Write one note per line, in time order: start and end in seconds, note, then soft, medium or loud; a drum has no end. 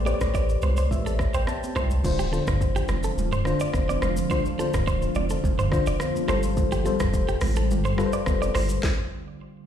0.00 0.14 A1 loud
0.00 0.05 A3 medium
0.00 0.06 G4 medium
0.00 0.06 B4 medium
0.00 0.07 C5 medium
0.00 0.14 D5 medium
0.05 0.96 A3 medium
0.05 0.97 G4 medium
0.05 0.62 B4 medium
0.05 0.97 C5 medium
0.05 0.14 C#5 medium
0.05 0.15 D5 medium
0.05 high conga medium
0.05 shaker medium
0.14 0.76 D5 loud
0.21 0.56 A1 loud
0.21 kick medium
0.21 cross-stick loud
0.21 shaker medium
0.34 0.43 D5 medium
0.34 kick medium
0.34 shaker medium
0.49 shaker medium
0.62 0.87 C2 medium
0.62 0.77 B4 medium
0.62 0.71 C5 medium
0.62 high conga medium
0.62 low conga medium
0.62 shaker medium
0.77 0.86 C5 medium
0.77 0.90 D5 medium
0.77 shaker medium
0.91 1.27 A1 medium
0.91 1.31 E5 medium
0.91 kick medium
0.91 low conga medium
0.91 shaker medium
1.06 1.14 A4 medium
1.06 high conga medium
1.06 shaker medium
1.19 kick medium
1.19 cross-stick medium
1.19 shaker soft
1.34 1.46 A1 medium
1.34 1.42 C5 medium
1.34 1.47 G5 medium
1.34 shaker medium
1.47 2.01 A5 medium
1.47 cross-stick medium
1.47 high conga medium
1.47 shaker medium
1.63 high conga medium
1.63 shaker soft
1.76 2.00 C2 loud
1.76 1.85 C5 medium
1.76 kick medium
1.76 cross-stick medium
1.76 low conga medium
1.76 shaker medium
1.90 shaker loud
2.03 2.41 D1 loud
2.03 2.27 D3 medium
2.03 8.80 D3 medium
2.03 6.25 F3 medium
2.03 8.80 A3 medium
2.03 8.80 C4 medium
2.03 2.27 D4 medium
2.03 8.80 F4 medium
2.03 2.27 F4 medium
2.03 2.28 C5 medium
2.03 kick loud
2.03 crash loud
2.03 low conga medium
2.03 shaker medium
2.19 2.27 G4 medium
2.19 shaker medium
2.31 3.23 D3 medium
2.31 3.23 D4 medium
2.31 3.24 F4 medium
2.31 2.41 A4 medium
2.31 3.24 C5 medium
2.31 high conga medium
2.31 shaker medium
2.47 2.83 G1 medium
2.47 kick medium
2.47 cross-stick loud
2.47 mid tom medium
2.47 shaker medium
2.61 kick medium
2.61 shaker medium
2.76 2.84 G4 medium
2.76 shaker soft
2.88 3.13 F1 medium
2.88 cross-stick loud
2.88 high conga medium
2.88 low conga medium
2.88 shaker medium
3.03 3.12 A4 medium
3.03 shaker medium
3.17 3.54 D1 loud
3.17 low conga medium
3.17 shaker medium
3.32 3.40 C5 medium
3.32 mid tom medium
3.32 shaker medium
3.45 4.14 D3 medium
3.45 4.14 D4 medium
3.45 4.14 F4 medium
3.45 4.15 C5 loud
3.45 cross-stick medium
3.45 shaker soft
3.60 3.69 D5 medium
3.60 shaker medium
3.74 3.98 F1 loud
3.74 kick medium
3.74 cross-stick medium
3.74 high conga medium
3.74 shaker medium
3.89 3.97 D5 medium
3.89 high conga medium
3.89 shaker soft
4.02 4.26 F1 medium
4.02 4.11 C5 medium
4.02 cross-stick loud
4.02 low conga medium
4.02 shaker medium
4.17 shaker loud
4.30 4.53 D3 medium
4.30 4.53 D4 medium
4.30 4.54 F4 medium
4.30 4.39 C5 loud
4.30 4.54 C5 medium
4.30 kick loud
4.30 low conga medium
4.30 shaker medium
4.45 shaker medium
4.58 5.49 D3 medium
4.58 5.50 D4 medium
4.58 5.50 F4 medium
4.58 4.68 A4 medium
4.58 5.51 C5 medium
4.58 high conga medium
4.58 shaker medium
4.74 5.09 D1 medium
4.74 kick medium
4.74 cross-stick loud
4.74 mid tom medium
4.74 shaker medium
4.87 4.96 C5 medium
4.87 kick medium
4.87 shaker medium
5.02 shaker medium
5.15 5.39 F1 medium
5.15 5.24 D5 medium
5.15 high conga medium
5.15 low conga medium
5.15 shaker medium
5.30 5.38 A4 medium
5.30 shaker medium
5.44 5.80 F1 medium
5.44 kick medium
5.44 low conga medium
5.44 shaker medium
5.59 5.67 C5 medium
5.59 mid tom medium
5.59 shaker medium
5.71 6.28 D3 medium
5.71 6.29 D4 medium
5.71 6.27 F4 medium
5.71 6.29 C5 loud
5.71 kick medium
5.71 cross-stick medium
5.71 shaker medium
5.86 5.98 F1 medium
5.86 5.95 D5 medium
5.86 shaker medium
6.00 cross-stick loud
6.00 high conga medium
6.00 shaker medium
6.16 high conga medium
6.16 shaker soft
6.27 6.89 G1 loud
6.27 6.74 G3 medium
6.27 8.81 G3 medium
6.27 6.74 F4 medium
6.27 6.75 A4 medium
6.27 6.38 C5 medium
6.27 6.75 C5 loud
6.27 cross-stick medium
6.27 low conga medium
6.27 shaker medium
6.43 shaker loud
6.57 kick loud
6.57 low conga medium
6.57 shaker medium
6.72 6.80 G4 medium
6.72 shaker medium
6.84 7.76 G3 medium
6.84 7.76 F4 medium
6.84 6.94 A4 medium
6.84 7.76 A4 medium
6.84 7.77 C5 medium
6.84 high conga medium
6.84 shaker medium
7.00 7.36 F1 medium
7.00 kick medium
7.00 cross-stick loud
7.00 mid tom medium
7.00 shaker medium
7.14 kick medium
7.14 shaker medium
7.28 7.36 G4 medium
7.28 shaker medium
7.41 7.72 A1 medium
7.41 cross-stick loud
7.41 open hi-hat medium
7.41 high conga medium
7.41 low conga medium
7.41 shaker medium
7.56 7.65 A4 medium
7.56 shaker medium
7.70 8.07 G1 loud
7.70 low conga medium
7.70 shaker medium
7.85 7.93 C5 medium
7.85 mid tom medium
7.85 shaker medium
7.97 8.66 G3 medium
7.97 8.67 F4 medium
7.97 8.67 A4 medium
7.97 8.06 B4 medium
7.97 cross-stick loud
7.97 shaker soft
8.06 8.71 C5 loud
8.13 8.21 D5 medium
8.13 shaker medium
8.26 8.51 F1 loud
8.26 kick medium
8.26 cross-stick loud
8.26 high conga medium
8.26 shaker medium
8.42 8.50 D5 medium
8.42 high conga medium
8.42 shaker medium
8.55 8.79 G1 loud
8.55 8.64 C5 medium
8.55 cross-stick medium
8.55 open hi-hat medium
8.55 low conga medium
8.55 shaker medium
8.69 shaker loud
8.83 kick loud
8.83 snare medium